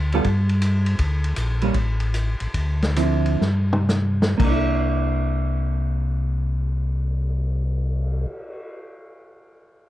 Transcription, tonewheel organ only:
0.00 0.22 D2 medium
0.25 0.96 G2 medium
0.99 1.34 D2 medium
1.37 1.72 A#1 medium
1.74 2.36 A1 medium
2.41 2.48 A1 soft
2.54 3.37 D2 medium
3.41 4.35 G2 medium
4.40 8.26 C2 medium

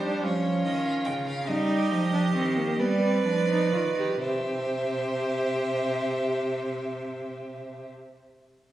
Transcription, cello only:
0.00 0.26 G3 medium
0.24 0.65 F3 medium
0.65 1.08 D#3 medium
1.06 1.50 C#3 medium
1.49 1.92 G3 medium
1.91 2.34 F3 medium
2.35 2.79 D#3 medium
2.80 3.25 G3 medium
3.25 3.74 F3 medium
3.72 4.20 D#3 medium
4.21 7.90 C3 medium

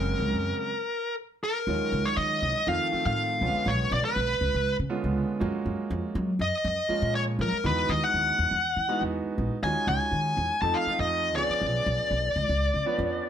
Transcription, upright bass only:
0.00 0.13 F#1 medium
0.20 0.29 C#2 medium
0.32 0.51 F#2 medium
1.67 1.77 D#2 medium
1.92 2.03 C#2 medium
2.17 2.36 D#3 medium
2.42 2.52 C2 medium
2.67 2.77 F2 medium
2.93 muted upright bass stroke soft
3.06 3.43 A2 medium
3.41 3.52 C#2 medium
3.54 muted upright bass stroke soft
3.66 3.86 B1 medium
3.91 4.02 B1 loud
4.16 4.35 B1 medium
4.41 4.51 C#2 medium
4.54 4.74 C#2 medium
4.79 4.88 C#3 medium
5.04 5.23 C#2 medium
5.41 5.51 F#2 loud
5.66 5.76 F#2 medium
5.91 6.01 F2 medium
6.15 6.34 F#3 loud
6.39 6.50 F#2 medium
6.64 6.75 F#2 medium
6.89 muted upright bass stroke soft
7.02 7.40 A#2 loud
7.39 7.49 F#3 medium
7.53 muted upright bass stroke soft
7.64 7.83 E2 medium
7.89 7.99 D#2 loud
8.14 8.33 D#2 medium
8.39 8.49 E2 medium
8.51 8.71 E2 medium
8.76 8.86 E3 medium
9.01 9.21 E2 medium
9.38 9.48 A#1 medium
9.63 9.73 D#2 medium
9.87 9.98 C#2 medium
10.12 10.31 D#3 medium
10.37 10.47 E2 medium
10.62 10.72 F2 medium
10.87 muted upright bass stroke soft
10.99 11.36 F2 medium
11.36 11.46 C#2 medium
11.50 muted upright bass stroke soft
11.62 11.81 B1 medium
11.86 11.96 B1 loud
12.11 12.30 B1 medium
12.36 12.46 C#2 medium
12.49 12.68 C#2 medium
12.74 12.83 C#3 medium
12.99 13.18 F2 medium

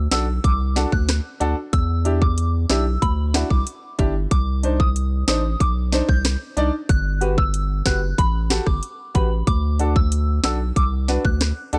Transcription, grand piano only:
0.11 0.25 D4 medium
0.11 0.25 F#4 medium
0.11 0.25 A4 medium
0.76 0.89 D4 medium
0.76 0.89 F#4 medium
0.76 0.90 A4 medium
1.40 1.54 D4 medium
1.40 1.54 F#4 medium
1.40 1.54 A4 loud
2.05 2.18 D4 medium
2.05 2.18 E4 medium
2.05 2.19 G4 medium
2.69 2.83 D4 medium
2.69 2.83 E4 medium
2.69 2.83 G4 medium
3.34 3.47 D4 medium
3.34 3.47 E4 medium
3.34 3.48 F#4 medium
3.98 4.12 D4 medium
3.98 4.12 E4 medium
3.98 4.12 G4 loud
4.63 4.76 D4 medium
4.63 4.77 D#4 medium
4.63 4.77 C5 medium
5.28 5.41 D4 medium
5.28 5.41 D#4 medium
5.28 5.41 C5 medium
5.92 6.05 D4 medium
5.92 6.06 D#4 medium
5.92 6.06 C5 medium
6.57 6.70 D4 medium
6.57 6.70 D#4 medium
6.57 6.70 D5 loud
7.21 7.34 F#4 medium
7.21 7.34 G4 medium
7.21 7.35 B4 medium
7.85 7.99 F#4 medium
7.85 7.99 G4 medium
7.85 7.99 B4 medium
8.50 8.63 F#4 medium
8.50 8.63 G4 medium
8.50 8.64 A4 medium
9.14 9.28 F#4 medium
9.14 9.28 G4 medium
9.14 9.28 B4 medium
9.79 9.92 D4 medium
9.79 9.93 F#4 medium
9.79 9.93 A4 medium
10.44 10.57 D4 medium
10.44 10.57 F#4 medium
10.44 10.57 A4 medium
11.08 11.21 D4 medium
11.08 11.22 F#4 medium
11.08 11.22 B4 medium
11.73 11.79 D4 loud
11.73 11.79 F#4 medium
11.73 11.79 A4 loud

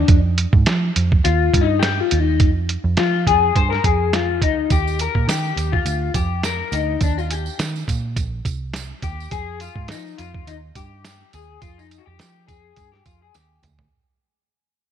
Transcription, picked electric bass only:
0.09 0.45 F2 medium
0.53 0.63 G#2 loud
0.67 0.90 F3 medium
0.96 1.19 F2 medium
1.25 1.48 D#2 medium
1.54 2.00 G2 medium
2.12 2.40 D#2 medium
2.40 2.76 F2 loud
2.84 2.95 F2 medium
2.98 3.28 F3 loud
3.27 3.50 F2 medium
3.55 3.78 G2 medium
3.84 4.42 F2 medium
4.42 4.65 D2 medium
4.71 5.06 D#2 medium
5.15 5.26 A#2 medium
5.28 5.51 D#3 loud
5.56 5.80 D#2 medium
5.86 6.09 D2 medium
6.15 6.61 F2 medium
6.72 6.95 D2 medium
7.02 7.48 D#2 medium
7.59 7.82 D#3 medium
7.88 8.18 A#2 loud
8.17 8.40 A#1 medium
8.45 8.91 C2 medium
9.03 9.26 D#2 loud
9.32 9.68 F2 medium
9.76 9.92 G#2 medium
9.90 10.13 F3 medium
10.19 10.42 F2 medium
10.47 10.70 D#2 medium
10.76 11.22 G2 medium
11.34 11.57 D#2 medium
11.62 11.98 F2 medium
12.07 12.18 F2 loud
12.20 12.50 F3 loud
12.49 12.72 F2 medium
12.77 13.00 G2 medium
13.06 13.29 F2 medium
13.35 13.58 D#2 medium
13.63 13.86 D2 loud

